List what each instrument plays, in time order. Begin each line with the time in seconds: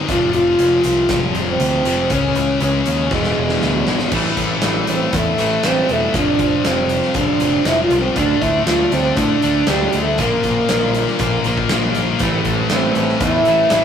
Already playing: distorted electric guitar G#3 C4, clean electric guitar G#3 G#4
0.09 picked electric bass F1, clean electric guitar F2, distorted electric guitar C3 F3, french horn F4, kick, closed hi-hat
0.33 picked electric bass F1, clean electric guitar F3, french horn F4, closed hi-hat
0.59 picked electric bass F1, clean electric guitar G#3, closed hi-hat
0.84 picked electric bass C2, clean electric guitar C4, french horn F4, closed hi-hat
1.09 picked electric bass F1, clean electric guitar F4, kick, snare, closed hi-hat
1.35 picked electric bass F1, clean electric guitar G#3, closed hi-hat
1.49 french horn C4
1.60 picked electric bass D2, clean electric guitar F3, closed hi-hat
1.85 picked electric bass F1, distorted electric guitar F2 C3 F3, clean electric guitar G#3, closed hi-hat
2.10 picked electric bass C#2, clean electric guitar C#3, distorted electric guitar G#3, french horn C#4, kick, closed hi-hat
2.14 distorted electric guitar C#4
2.35 picked electric bass C#2, clean electric guitar E3, closed hi-hat
2.60 picked electric bass C#2, clean electric guitar G#3, french horn C#4, closed hi-hat
2.86 picked electric bass D#2, clean electric guitar C#4, closed hi-hat
3.11 picked electric bass E1, clean electric guitar E2, distorted electric guitar B2 E3, french horn G#3, kick, snare
3.24 snare
3.37 picked electric bass E1, clean electric guitar G#3
3.49 snare
3.62 picked electric bass D2, clean electric guitar E3, snare
3.87 picked electric bass G#1, clean electric guitar G#3, snare
3.99 snare
4.11 picked electric bass A1, clean electric guitar A2 E3 A3 C4 E4, kick, crash
4.37 picked electric bass A1, clean electric guitar A3 C4 E4, kick, closed hi-hat
4.62 picked electric bass A1, clean electric guitar A2 E3 A3 C4 E4, snare, closed hi-hat
4.87 picked electric bass A1, clean electric guitar A3 C4 E4, closed hi-hat
4.92 french horn C4
5.13 picked electric bass E2, clean electric guitar E3 A3 C4 E4, french horn A3, kick, closed hi-hat
5.38 picked electric bass A1, clean electric guitar A2 E3 A3 C4 E4, closed hi-hat
5.63 picked electric bass A1, distorted electric guitar A2, clean electric guitar E3 A3 C4 E4, french horn C4, snare, closed hi-hat
5.89 picked electric bass E1, clean electric guitar A3 C4 E4, french horn A3, closed hi-hat
6.14 picked electric bass F1, clean electric guitar F2 C3 F3 G#3 C4 F4, french horn D4, kick, closed hi-hat
6.39 picked electric bass F1, clean electric guitar F3 G#3 C4 F4, kick, closed hi-hat
6.65 picked electric bass F1, clean electric guitar F2 C3 F3 G#3 C4 F4, french horn C4, snare, closed hi-hat
6.89 clean electric guitar F3 G#3 C4 F4, closed hi-hat
7.02 snare
7.14 picked electric bass F1, clean electric guitar F3 G#3 C4 F4, french horn D4, kick, closed hi-hat
7.40 picked electric bass F1, clean electric guitar F2 C3 F3 G#3 C4 F4, closed hi-hat
7.65 picked electric bass F1, distorted electric guitar F2 C3, clean electric guitar F3 G#3 C4 F4, french horn E4, snare, closed hi-hat
7.84 french horn F4
7.90 picked electric bass C2, clean electric guitar F3 G#3 C4 F4, closed hi-hat
8.01 french horn C4
8.16 picked electric bass D2, clean electric guitar D3 A3 D4 F4, french horn D4, kick, closed hi-hat
8.42 picked electric bass D2, clean electric guitar A3 D4 F4, french horn E4, kick, closed hi-hat
8.67 picked electric bass D2, clean electric guitar D3 A3 D4 F4, french horn F4, snare, closed hi-hat
8.91 picked electric bass D2, clean electric guitar A3 D4 F4, french horn C4, closed hi-hat
9.17 picked electric bass A2, clean electric guitar D3 A3 D4 F4, french horn D4, kick, closed hi-hat
9.42 picked electric bass D2, clean electric guitar D3 A3 D4 F4, closed hi-hat
9.67 picked electric bass D2, clean electric guitar D3 A3 D4 F4, french horn G3, snare, closed hi-hat
9.93 picked electric bass D2, clean electric guitar A3 D4 F4, closed hi-hat
10.02 french horn A3
10.18 picked electric bass A#1, clean electric guitar A#2 D3 A#3 D4 F4, distorted electric guitar F3, french horn A#3, kick, closed hi-hat
10.43 picked electric bass A#1, clean electric guitar A#3 D4 F4, kick, closed hi-hat
10.69 picked electric bass A#1, clean electric guitar A#2 D3 A#3 D4 F4, snare, closed hi-hat
10.94 clean electric guitar A#3 D4 F4, closed hi-hat
11.08 snare
11.19 picked electric bass A#1, clean electric guitar D3 A#3 D4 F4, kick, closed hi-hat
11.44 picked electric bass A#1, clean electric guitar A#2 D3 A#3 D4 F4, distorted electric guitar F3, closed hi-hat
11.57 kick
11.69 picked electric bass A#1, distorted electric guitar A#2 F3, clean electric guitar D3 A#3 D4 F4, snare, closed hi-hat
11.95 picked electric bass A#1, clean electric guitar A#3 D4 F4, closed hi-hat
12.19 picked electric bass A1, clean electric guitar A2 E3 A3 C4 E4, kick, closed hi-hat
12.45 picked electric bass A1, clean electric guitar A3 C4 E4, kick, closed hi-hat
12.70 picked electric bass A1, clean electric guitar A2 E3 A3 C4 E4, snare, closed hi-hat
12.75 french horn C4
12.95 picked electric bass A1, distorted electric guitar A2 E3, clean electric guitar A3 C4 E4, closed hi-hat
13.08 snare
13.20 picked electric bass E2, clean electric guitar E3 A3 C4 E4, french horn E4, kick, closed hi-hat
13.45 picked electric bass A1, clean electric guitar A3 C4 E4, closed hi-hat
13.49 clean electric guitar A2 E3
13.70 picked electric bass A1, distorted electric guitar A2, clean electric guitar E3 A3 C4 E4, snare, closed hi-hat